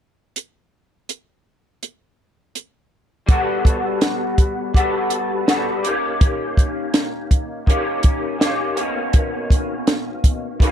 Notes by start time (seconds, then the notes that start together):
0.36 closed hi-hat
1.09 closed hi-hat
1.83 closed hi-hat
2.55 closed hi-hat
3.26 G3 B3 F#4, kick, closed hi-hat
3.32 A4
3.65 kick, closed hi-hat
4.01 snare, closed hi-hat
4.38 kick, closed hi-hat
4.74 G3 B3 F#4 A4, kick, closed hi-hat
5.10 closed hi-hat
5.46 G3 B3 F#4 A4, snare, closed hi-hat
5.83 A#3 C#4 G4, closed hi-hat
5.88 D#3
6.21 kick, closed hi-hat
6.57 kick, closed hi-hat
6.94 snare, closed hi-hat
7.31 kick, closed hi-hat
7.66 D#3 A#3 C#4 G4, kick, closed hi-hat
8.03 kick, closed hi-hat
8.39 D#3 A#3 C#4 G4, snare, closed hi-hat
8.75 D#3 A#3 C#4, closed hi-hat
8.80 B2
9.13 kick, closed hi-hat
9.50 kick, closed hi-hat
9.87 snare, closed hi-hat
10.24 kick, closed hi-hat
10.59 B2 D#3 A#3 C#4, kick, closed hi-hat